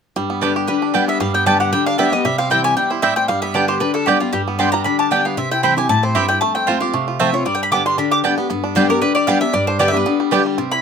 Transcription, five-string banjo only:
0.16 0.68 G3 medium
0.30 0.66 B3 medium
0.42 0.80 D4 medium
0.56 1.60 G4 medium
0.68 0.94 G3 medium
0.82 1.18 D4 medium
0.95 1.20 G3 medium
1.08 1.33 B3 medium
1.21 1.72 G3 medium
1.34 1.70 B3 medium
1.47 1.84 D4 medium
1.60 2.64 G4 medium
1.73 1.98 G3 medium
1.87 2.22 D4 medium
1.99 2.25 G3 medium
2.12 2.25 B3 medium
2.25 2.76 G3 medium
2.39 2.75 C4 medium
2.51 2.88 E4 medium
2.65 3.68 G4 medium
2.77 3.03 G3 medium
2.91 3.27 E4 medium
3.03 3.29 G3 medium
3.17 3.29 C4 medium
3.29 3.94 G3 medium
3.42 3.78 B3 medium
3.55 3.80 D4 medium
3.69 4.07 G4 medium
3.81 4.18 D4 medium
3.95 4.21 G3 medium
4.07 4.44 G4 medium
4.21 4.32 G3 medium
4.33 4.70 G3 medium
4.48 4.83 B3 medium
4.60 4.85 D4 medium
4.74 5.09 G3 medium
4.86 5.11 D4 medium
5.00 5.35 G4 medium
5.12 5.38 D4 medium
5.26 5.37 B3 medium
5.38 5.62 C4 medium
5.51 5.87 E4 medium
5.64 6.01 C4 medium
5.78 6.13 G4 medium
5.89 6.27 E4 medium
6.03 6.39 C4 medium
6.16 6.42 G4 medium
6.30 6.42 E4 medium
6.42 6.79 A3 medium
6.56 6.91 C4 medium
6.68 7.05 F4 medium
6.82 7.17 G4 medium
6.94 7.19 A3 medium
7.08 7.43 F4 medium
7.20 7.46 A3 medium
7.34 7.46 C4 medium
7.46 7.83 G3 medium
7.72 7.97 D4 medium
7.86 8.21 G3 medium
7.98 8.23 D4 medium
8.11 8.47 G4 medium
8.24 8.50 D4 medium
8.38 8.49 B3 medium
8.50 8.87 B3 medium
8.64 8.99 D4 medium
8.76 9.02 G3 medium
8.90 9.16 G4 medium
9.02 9.27 G3 medium
9.16 9.80 G4 medium
9.28 9.53 G3 medium
9.42 9.67 D4 medium
9.54 9.94 G3 medium
9.68 10.04 D4 medium
9.80 10.32 G4 medium
9.94 10.20 G3 medium
10.06 10.43 B3 medium
10.20 10.46 G3 medium
10.32 10.82 G4 medium
10.46 10.82 G3 medium
10.58 10.82 C4 medium
10.72 10.82 E4 medium

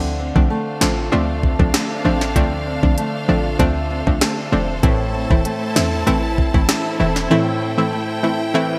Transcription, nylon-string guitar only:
0.00 2.35 D3 medium
0.00 0.50 A3 medium
0.00 0.19 C4 medium
0.19 1.43 C4 medium
0.50 1.12 A3 medium
0.81 3.27 F4 medium
1.12 1.74 A3 medium
1.43 2.05 C4 medium
1.74 2.97 A3 medium
2.05 2.66 C4 medium
2.36 4.83 D3 medium
2.67 3.90 C4 medium
2.98 3.59 A3 medium
3.29 4.90 F4 medium
3.60 4.21 A3 medium
3.90 4.52 C4 medium
4.21 5.45 A3 medium
4.52 5.14 C4 medium
4.83 7.30 A2 medium
5.14 6.38 C4 medium
5.45 6.69 A3 medium
5.76 8.22 E4 medium
6.07 8.53 E3 medium
6.38 6.99 C4 medium
6.69 7.92 A3 medium
7.00 7.61 C4 medium
7.31 8.79 A2 medium
7.62 8.79 C4 medium
7.93 8.79 A3 medium
8.24 8.79 E4 medium
8.55 8.79 E3 medium

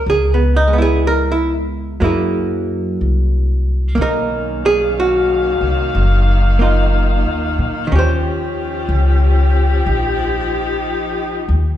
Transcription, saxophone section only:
3.97 7.87 D#3 medium
3.97 7.87 A#3 medium
3.97 5.93 C#4 medium
3.97 7.87 F5 medium
5.95 7.89 D#4 medium
7.90 11.59 F3 medium
7.90 9.84 C#4 medium
7.90 11.59 G4 medium
9.85 11.59 D#4 medium

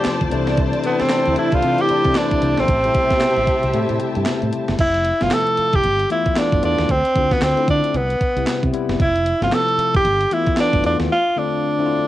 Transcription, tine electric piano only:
0.00 0.31 C3 medium
0.00 0.33 F3 medium
0.00 0.32 A3 medium
0.00 0.33 B3 medium
0.00 0.32 D4 medium
0.00 0.27 F4 medium
0.31 0.76 C3 medium
0.31 0.76 E3 medium
0.31 0.76 A3 medium
0.31 0.76 D4 loud
0.84 1.23 C3 medium
0.84 1.23 E3 medium
0.84 1.23 A3 medium
0.84 1.23 D4 medium
1.36 1.48 C3 medium
1.36 1.48 E3 medium
1.36 1.48 A3 medium
1.36 1.48 D4 medium
1.52 1.87 C3 medium
1.52 1.87 E3 medium
1.52 1.87 A3 medium
1.52 1.87 D4 medium
2.05 2.12 C3 medium
2.05 2.13 E3 medium
2.05 2.13 A3 medium
2.05 2.13 E4 medium
2.15 2.43 C3 medium
2.15 2.43 E3 medium
2.15 2.44 A3 medium
2.15 2.44 E4 medium
2.58 2.68 C3 medium
2.58 2.68 E3 medium
2.58 2.69 A3 medium
2.58 2.69 D4 medium
2.84 2.89 B2 medium
2.84 3.46 G3 medium
2.84 3.46 A3 medium
2.84 3.47 E4 medium
2.91 3.49 C3 medium
3.73 4.48 C3 medium
3.73 4.48 G3 medium
3.73 4.49 A3 medium
3.73 4.49 E4 loud
5.21 5.83 C3 medium
5.21 5.83 F3 medium
5.21 5.83 A3 medium
5.21 5.83 E4 medium
6.10 6.30 E3 medium
6.10 6.30 A3 medium
6.10 6.31 B3 medium
6.10 6.31 F4 medium
6.36 6.56 E3 medium
6.36 6.57 A3 medium
6.36 6.57 B3 medium
6.36 6.57 F4 medium
6.62 6.89 E3 medium
6.62 6.89 A3 medium
6.62 6.89 B3 medium
6.62 6.90 F4 medium
7.15 7.43 D3 medium
7.15 7.43 A3 medium
7.15 7.44 C4 medium
7.15 7.44 F4 medium
7.57 7.94 D3 medium
7.57 7.95 A3 medium
7.57 7.95 C4 medium
7.57 7.95 E4 medium
8.36 8.64 C3 medium
8.36 8.64 G3 medium
8.36 8.64 B3 medium
8.36 8.64 E4 medium
8.73 8.99 C3 medium
8.73 9.00 G3 medium
8.73 9.00 B3 medium
8.73 9.00 E4 loud
9.41 10.03 C3 medium
9.41 10.04 F3 medium
9.41 10.04 A3 medium
9.41 10.04 E4 medium
10.31 10.51 E3 medium
10.31 10.52 A3 medium
10.31 10.52 B3 medium
10.31 10.52 F4 medium
10.58 10.78 E3 medium
10.58 10.78 A3 medium
10.58 10.78 B3 medium
10.58 10.78 F4 medium
10.84 11.10 E3 medium
10.84 11.10 A3 medium
10.84 11.11 B3 medium
10.84 11.11 F4 medium
11.36 11.64 D3 medium
11.36 11.65 A3 medium
11.36 11.65 C4 medium
11.36 11.65 F4 medium
11.78 12.07 D3 medium
11.78 12.07 A3 medium
11.78 12.07 C4 medium
11.78 11.84 E4 medium
11.86 12.07 F4 medium

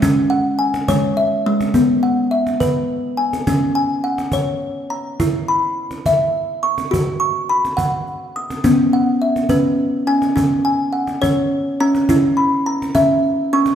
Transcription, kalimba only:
0.00 0.85 C#4 medium
0.00 0.31 E5 medium
0.30 1.17 F#5 medium
0.59 1.46 G#5 medium
0.89 1.16 G#3 medium
0.89 1.46 C#5 medium
1.17 2.03 E5 medium
1.46 1.73 G#3 medium
1.74 2.32 B3 medium
2.03 2.89 F#5 medium
2.31 3.18 E5 medium
2.60 3.18 B4 medium
3.17 3.74 G#5 medium
3.47 4.05 C#4 medium
3.75 4.62 G#5 medium
4.04 4.90 F#5 medium
4.33 4.91 C#5 medium
4.90 5.48 A#5 medium
5.20 5.77 E4 medium
5.48 6.34 B5 medium
6.06 6.63 E5 medium
6.63 7.19 C#6 medium
6.91 7.49 F#4 medium
7.20 8.06 C#6 medium
7.50 8.35 B5 medium
7.77 8.35 F#5 medium
8.36 8.93 D#6 medium
8.64 9.21 B3 medium
8.64 9.46 C#4 medium
8.93 9.79 F#5 medium
9.22 10.08 E5 medium
9.49 10.04 C#4 medium
9.49 10.07 B4 medium
10.07 10.34 C#4 medium
10.07 10.64 G#5 medium
10.36 10.93 C#4 medium
10.65 11.51 G#5 medium
10.93 11.79 F#5 medium
11.22 11.76 C#4 medium
11.22 11.79 C#5 medium
11.80 12.07 C#4 medium
11.80 12.38 A#5 medium
12.09 12.91 C#4 medium
12.09 12.66 E4 medium
12.37 13.23 B5 medium
12.66 13.52 A#5 medium
12.95 13.48 C#4 medium
12.95 13.52 E5 medium
13.53 13.75 C#4 medium
13.53 13.75 C#6 medium

